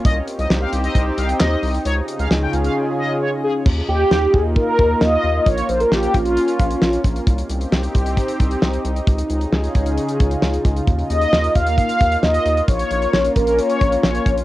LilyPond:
<<
  \new Staff \with { instrumentName = "Analog polysynth" } { \time 4/4 \key ees \mixolydian \tempo 4 = 133 ees''16 r8 ees''16 r16 f''16 r16 ees''8 r16 f''16 r16 ees''8. r16 | des''16 r8 f''16 r16 g''16 r16 f''16 r8 ees''8 des''16 r16 aes'16 r16 | r1 | r1 |
r1 | r1 | r1 | r1 | }
  \new Staff \with { instrumentName = "Analog polysynth" } { \time 4/4 \key ees \mixolydian r1 | r1 | r8 g'4 aes'8 bes'4 ees''4 | des''8 c''16 bes'16 g'8 f'2 r8 |
r1 | r1 | r8 ees''4 f''8 f''4 ees''4 | des''4. bes'8 des''4 des''8. r16 | }
  \new Staff \with { instrumentName = "Analog synth pad" } { \time 4/4 \key ees \mixolydian << { <c' g'>1 | <des des' aes'>1 | <bes f'>1~ | <bes f'>1 |
<c' g'>1 | <des des' aes'>1 | bes1 | bes1 | } \\ { ees'1 | f'1 | ees'1 | des'1 |
ees'1 | f'1~ | f'1 | des'1 | } >> }
  \new Staff \with { instrumentName = "Analog synth bass" } { \clef bass \time 4/4 \key ees \mixolydian c,8 r16 c,16 c,8 c,8 c,8 c,8 ees,8 c,8 | des,8 r16 des,16 des,8 des,8 r2 | ees,8 ees,8 ees,8 ees,8. r16 ees,8 ees,8 ees,8 | bes,,8 bes,,8 bes,,8 bes,,8. r16 bes,,8 bes,,8 bes,,8 |
c,8 c,8 c,8 c,8. r16 c,8 c,8 c,8 | des,8 des,8 des,8 des,8. r16 des,8 des,8 des,8 | ees,8 ees,8 ees,8 ees,8. r16 ees,8 ees,8 ees,8 | bes,,8 bes,,8 bes,,8 bes,,8. r16 bes,,8 bes,,8 bes,,8 | }
  \new DrumStaff \with { instrumentName = "Drums" } \drummode { \time 4/4 <hh bd>8 hh16 hh16 sn8 hh16 hh16 <hh bd>8 hh16 hh16 <hc sn>8 hho16 hh16 | hh8 hh16 hh16 sn8 hh16 hh16 r4 r4 | <cymc bd>4 sn8 bd8 bd8 bd8 sn4 | <hh bd>16 hh16 hh16 hh16 sn16 hh16 <hh bd>16 hh16 hh16 hh16 <hh bd>16 hh16 sn16 hh16 <hh bd>16 hh16 |
<hh bd>16 hh16 hh16 hh16 sn16 hh16 <hh bd>16 hh16 <hh bd>16 hh16 <hh bd>16 hh16 sn16 hh16 hh16 hh16 | <hh bd>16 hh16 hh16 hh16 sn16 hh16 <hh bd>16 hh16 hh16 hh16 <hh bd>16 hh16 sn16 hh16 <hh bd>16 hh16 | <hh bd>16 hh16 hh16 hh16 sn16 hh16 <hh bd>16 hh16 <hh bd>16 hh16 <hh bd>16 hh16 sn16 hh16 hh16 hh16 | <hh bd>16 hh16 hh16 hh16 sn16 hh16 <hh bd>16 hh16 hh16 hh16 <hh bd>16 hh16 sn16 hh16 <hh bd>16 hh16 | }
>>